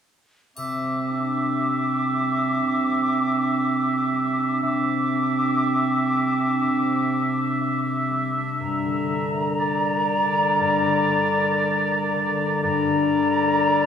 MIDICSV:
0, 0, Header, 1, 6, 480
1, 0, Start_track
1, 0, Tempo, 1027397
1, 265, Time_signature, 4, 2, 24, 8
1, 1221, Tempo, 998336
1, 4581, Tempo, 1015228
1, 6594, End_track
2, 0, Start_track
2, 0, Title_t, "Flute"
2, 0, Program_c, 0, 73
2, 263, Note_on_c, 0, 86, 34
2, 2167, Note_off_c, 0, 86, 0
2, 2186, Note_on_c, 0, 86, 37
2, 3954, Note_off_c, 0, 86, 0
2, 4103, Note_on_c, 0, 82, 49
2, 6000, Note_off_c, 0, 82, 0
2, 6016, Note_on_c, 0, 82, 54
2, 6594, Note_off_c, 0, 82, 0
2, 6594, End_track
3, 0, Start_track
3, 0, Title_t, "Oboe"
3, 0, Program_c, 1, 68
3, 271, Note_on_c, 1, 76, 32
3, 2171, Note_off_c, 1, 76, 0
3, 2192, Note_on_c, 1, 76, 35
3, 4434, Note_off_c, 1, 76, 0
3, 4578, Note_on_c, 1, 74, 48
3, 5998, Note_off_c, 1, 74, 0
3, 6014, Note_on_c, 1, 74, 52
3, 6594, Note_off_c, 1, 74, 0
3, 6594, End_track
4, 0, Start_track
4, 0, Title_t, "Harp"
4, 0, Program_c, 2, 46
4, 267, Note_on_c, 2, 48, 31
4, 389, Note_on_c, 2, 55, 24
4, 514, Note_on_c, 2, 62, 27
4, 634, Note_on_c, 2, 67, 27
4, 754, Note_on_c, 2, 76, 28
4, 868, Note_off_c, 2, 67, 0
4, 873, Note_on_c, 2, 67, 25
4, 985, Note_off_c, 2, 55, 0
4, 991, Note_on_c, 2, 55, 25
4, 1102, Note_off_c, 2, 62, 0
4, 1108, Note_on_c, 2, 62, 27
4, 1219, Note_off_c, 2, 48, 0
4, 1225, Note_on_c, 2, 48, 29
4, 1340, Note_off_c, 2, 55, 0
4, 1345, Note_on_c, 2, 55, 25
4, 1459, Note_off_c, 2, 62, 0
4, 1465, Note_on_c, 2, 62, 26
4, 1577, Note_off_c, 2, 67, 0
4, 1583, Note_on_c, 2, 67, 27
4, 1702, Note_off_c, 2, 76, 0
4, 1708, Note_on_c, 2, 76, 28
4, 1824, Note_off_c, 2, 67, 0
4, 1830, Note_on_c, 2, 67, 27
4, 1943, Note_off_c, 2, 55, 0
4, 1949, Note_on_c, 2, 55, 27
4, 2064, Note_off_c, 2, 62, 0
4, 2070, Note_on_c, 2, 62, 25
4, 2182, Note_off_c, 2, 48, 0
4, 2188, Note_on_c, 2, 48, 34
4, 2304, Note_off_c, 2, 55, 0
4, 2310, Note_on_c, 2, 55, 26
4, 2426, Note_off_c, 2, 62, 0
4, 2432, Note_on_c, 2, 62, 29
4, 2546, Note_off_c, 2, 67, 0
4, 2551, Note_on_c, 2, 67, 29
4, 2666, Note_off_c, 2, 76, 0
4, 2671, Note_on_c, 2, 76, 30
4, 2789, Note_off_c, 2, 67, 0
4, 2795, Note_on_c, 2, 67, 30
4, 2910, Note_off_c, 2, 55, 0
4, 2916, Note_on_c, 2, 55, 27
4, 3028, Note_off_c, 2, 62, 0
4, 3034, Note_on_c, 2, 62, 29
4, 3146, Note_off_c, 2, 48, 0
4, 3151, Note_on_c, 2, 48, 34
4, 3264, Note_off_c, 2, 55, 0
4, 3269, Note_on_c, 2, 55, 31
4, 3386, Note_off_c, 2, 62, 0
4, 3391, Note_on_c, 2, 62, 30
4, 3503, Note_off_c, 2, 67, 0
4, 3509, Note_on_c, 2, 67, 32
4, 3617, Note_off_c, 2, 76, 0
4, 3623, Note_on_c, 2, 76, 32
4, 3740, Note_off_c, 2, 67, 0
4, 3745, Note_on_c, 2, 67, 34
4, 3856, Note_off_c, 2, 55, 0
4, 3861, Note_on_c, 2, 55, 34
4, 3977, Note_off_c, 2, 62, 0
4, 3983, Note_on_c, 2, 62, 33
4, 4100, Note_on_c, 2, 43, 43
4, 4122, Note_off_c, 2, 76, 0
4, 4124, Note_off_c, 2, 48, 0
4, 4217, Note_on_c, 2, 50, 34
4, 4333, Note_off_c, 2, 62, 0
4, 4338, Note_on_c, 2, 62, 38
4, 4455, Note_on_c, 2, 70, 37
4, 4577, Note_on_c, 2, 74, 39
4, 4688, Note_off_c, 2, 70, 0
4, 4694, Note_on_c, 2, 70, 38
4, 4806, Note_off_c, 2, 50, 0
4, 4812, Note_on_c, 2, 50, 33
4, 4927, Note_off_c, 2, 62, 0
4, 4933, Note_on_c, 2, 62, 35
4, 5047, Note_off_c, 2, 43, 0
4, 5053, Note_on_c, 2, 43, 42
4, 5171, Note_off_c, 2, 50, 0
4, 5177, Note_on_c, 2, 50, 40
4, 5291, Note_off_c, 2, 62, 0
4, 5297, Note_on_c, 2, 62, 37
4, 5409, Note_off_c, 2, 70, 0
4, 5415, Note_on_c, 2, 70, 40
4, 5528, Note_off_c, 2, 74, 0
4, 5533, Note_on_c, 2, 74, 41
4, 5603, Note_off_c, 2, 67, 0
4, 5651, Note_off_c, 2, 70, 0
4, 5657, Note_on_c, 2, 70, 40
4, 5717, Note_off_c, 2, 55, 0
4, 5769, Note_off_c, 2, 50, 0
4, 5775, Note_on_c, 2, 50, 43
4, 5892, Note_off_c, 2, 62, 0
4, 5898, Note_on_c, 2, 62, 38
4, 6011, Note_off_c, 2, 43, 0
4, 6016, Note_on_c, 2, 43, 52
4, 6127, Note_off_c, 2, 50, 0
4, 6133, Note_on_c, 2, 50, 38
4, 6251, Note_off_c, 2, 62, 0
4, 6257, Note_on_c, 2, 62, 41
4, 6372, Note_off_c, 2, 70, 0
4, 6377, Note_on_c, 2, 70, 41
4, 6491, Note_off_c, 2, 74, 0
4, 6497, Note_on_c, 2, 74, 41
4, 6594, Note_off_c, 2, 43, 0
4, 6594, Note_off_c, 2, 50, 0
4, 6594, Note_off_c, 2, 62, 0
4, 6594, Note_off_c, 2, 70, 0
4, 6594, Note_off_c, 2, 74, 0
4, 6594, End_track
5, 0, Start_track
5, 0, Title_t, "Clarinet"
5, 0, Program_c, 3, 71
5, 264, Note_on_c, 3, 60, 38
5, 2167, Note_off_c, 3, 60, 0
5, 2190, Note_on_c, 3, 60, 41
5, 3956, Note_off_c, 3, 60, 0
5, 4103, Note_on_c, 3, 55, 54
5, 6000, Note_off_c, 3, 55, 0
5, 6013, Note_on_c, 3, 55, 60
5, 6594, Note_off_c, 3, 55, 0
5, 6594, End_track
6, 0, Start_track
6, 0, Title_t, "Drums"
6, 264, Note_on_c, 9, 81, 23
6, 311, Note_off_c, 9, 81, 0
6, 6594, End_track
0, 0, End_of_file